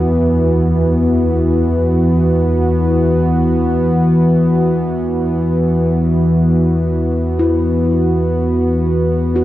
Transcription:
Already playing: kettle gongs D2, synth drone E2 E3, analog synth pad E3 B3 F#4
7.39 kettle gongs E4
9.36 kettle gongs F#4

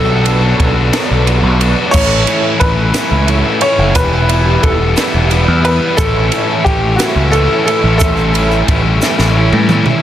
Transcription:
Already playing: picked electric bass B1, overdriven electric guitar B2, distorted electric guitar F#3 B3 D4 F#4, upright piano A4, string machine A4 D5 B5
0.26 distorted electric guitar F#3 B3 D4 F#4, ride
0.60 picked electric bass B1, kick, ride
0.93 overdriven electric guitar B2, distorted electric guitar F#3 B3 D4 F#4, snare, ride
1.11 picked electric bass B1
1.27 distorted electric guitar F#3 B3 D4 F#4, ride
1.43 picked electric bass B1
1.60 distorted electric guitar F#3 B3 D4 F#4, ride
1.91 picked electric bass A1, overdriven electric guitar A2, distorted electric guitar E3 A3 C#4 E4, upright piano C#5, string machine E5 C#6, kick, crash, shaker
2.27 distorted electric guitar E3 A3 C#4 E4, ride, shaker
2.60 picked electric bass A1, upright piano B4, kick, ride
2.94 overdriven electric guitar A2, distorted electric guitar E3 A3 C#4 E4, snare, ride, shaker
3.11 picked electric bass C#2
3.28 distorted electric guitar E3 A3 C#4 E4, ride
3.61 distorted electric guitar E3 A3 C#4 E4, upright piano C#5, ride
3.79 picked electric bass F#1
3.95 picked electric bass E1, distorted electric guitar E3 G3 B3 E4, string machine G4 D6, upright piano B4, kick, ride, shaker
4.29 distorted electric guitar E3 G3 B3 E4, ride
4.63 picked electric bass E1, upright piano A4, kick, ride
4.97 distorted electric guitar E3 G3 B3 E4, snare, ride, shaker
5.14 picked electric bass E1
5.30 distorted electric guitar E3 G3 B3 E4, ride, shaker
5.48 picked electric bass E2
5.65 distorted electric guitar E3 G3 B3 E4, upright piano B4, ride
5.97 picked electric bass A1, overdriven electric guitar A2, distorted electric guitar E3 A3 C#4 E4, upright piano A4, string machine A4 E5 C#6, kick, ride, shaker
6.32 distorted electric guitar E3 A3 C#4 E4, ride, shaker
6.64 picked electric bass A1, upright piano G4, kick, ride
6.96 distorted electric guitar E4, upright piano F#4, snare, ride, shaker
7.00 overdriven electric guitar A2, distorted electric guitar E3 A3 C#4
7.16 picked electric bass C#2
7.32 distorted electric guitar E3 A3 C#4 E4, upright piano A4, ride, shaker
7.66 distorted electric guitar E3 A3 C#4 E4, upright piano A4, ride
7.84 picked electric bass A1
7.98 picked electric bass A1, overdriven electric guitar A2 G3, distorted electric guitar E3 A3 C#4, upright piano A4, string machine G5, kick, ride, shaker
8.02 distorted electric guitar E4
8.17 shaker
8.34 distorted electric guitar E3 A3 C#4 E4, overdriven electric guitar G3, ride, shaker
8.51 shaker
8.68 picked electric bass A1, kick, ride
9.02 overdriven electric guitar A2 G3, distorted electric guitar E3 A3 C#4 E4, snare, shaker
9.19 picked electric bass A1, snare, shaker
9.36 distorted electric guitar E3 A3 C#4 E4, overdriven electric guitar G3
9.52 picked electric bass A2, mid tom
9.69 distorted electric guitar E3 A3 C#4 E4, overdriven electric guitar G3, mid tom, shaker
9.86 floor tom

